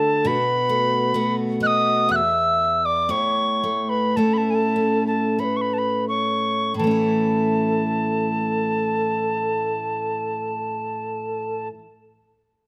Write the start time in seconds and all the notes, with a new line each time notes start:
Already playing: D3 A3 D4 F#4 A4 A5
0.25 B2 F#4 B4 B5
0.69 A3
1.14 A3 B3 F#4
1.60 B3 D#5 F#6
1.67 D#6
2.09 E2 F#5 F#6
2.14 E5 E6
2.85 D5 D6
3.09 A2 E4 C#5 C#6
3.63 A3
3.89 B4 B5
4.16 A3 C#4 E4 A4 A5
4.33 B5
4.38 A5
4.50 G#5
4.55 A5
4.76 C#4
5.07 A4 A5
5.39 A3 C#5 B5
5.44 B4
5.57 C#6
5.61 B5
5.74 A5
5.78 B5
6.08 C#5 C#6
6.74 A2 A4 A5
6.79 E3
6.84 A3 C#4
6.91 E4